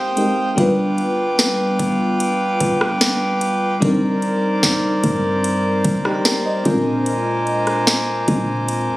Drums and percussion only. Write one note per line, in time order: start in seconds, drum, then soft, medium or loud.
0.17 closed hi-hat medium
0.58 kick loud
0.58 closed hi-hat medium
0.98 closed hi-hat soft
1.39 snare loud
1.39 closed hi-hat medium
1.79 kick medium
1.79 closed hi-hat medium
2.20 closed hi-hat medium
2.60 kick loud
2.60 closed hi-hat medium
2.81 cross-stick medium
3.01 snare loud
3.01 closed hi-hat medium
3.41 closed hi-hat medium
3.82 kick loud
3.82 closed hi-hat medium
4.22 closed hi-hat soft
4.63 snare loud
4.63 closed hi-hat medium
5.04 kick loud
5.04 closed hi-hat medium
5.44 closed hi-hat medium
5.84 kick loud
5.84 closed hi-hat medium
6.05 cross-stick medium
6.25 snare loud
6.25 closed hi-hat medium
6.65 kick loud
6.65 closed hi-hat medium
7.06 closed hi-hat medium
7.47 closed hi-hat soft
7.67 cross-stick medium
7.67 closed hi-hat soft
7.87 snare loud
7.87 closed hi-hat medium
8.28 kick medium
8.28 closed hi-hat medium
8.69 closed hi-hat medium